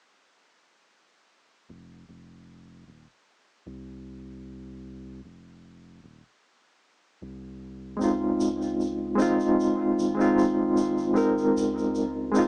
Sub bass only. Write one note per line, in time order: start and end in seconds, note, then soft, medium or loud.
1.69 2.04 F1 medium
2.08 2.84 F1 medium
2.87 3.05 D#1 medium
3.66 5.20 C2 medium
5.24 6.00 F1 medium
6.03 6.21 D#1 medium
7.21 7.97 C2 medium
8.01 8.35 C#2 loud
8.40 9.15 C#2 medium
9.19 9.37 G#1 medium
9.98 11.52 G#1 medium
11.56 12.31 C#2 medium
12.34 12.48 G#1 medium